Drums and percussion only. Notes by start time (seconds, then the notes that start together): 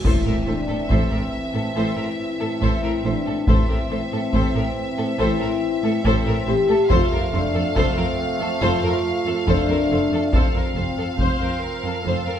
0.05 taiko
0.90 taiko
2.62 taiko
3.47 taiko
4.33 taiko
6.05 taiko
6.90 taiko
7.76 taiko
9.47 taiko
10.33 taiko
11.19 taiko